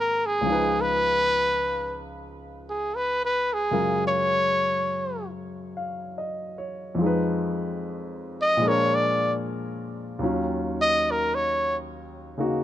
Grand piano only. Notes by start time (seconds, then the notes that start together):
Already playing: G#2 D#3 F3 A#3 C4 G#4 A#4
0.41 C#2 C#3
0.46 F3 D#4
0.52 B4
3.71 F#2 C#3 G#3 F4 A#4
5.77 F5
6.18 D#5
6.58 C#5
6.95 F2 F3
7.01 G#3 D#4
7.06 B4
8.57 A#2 F3
8.61 G#3
8.65 D4 A#4
10.19 D#2 D#3 F#3
10.23 C#4 F4
12.37 C#3 A#3 D#4 F#4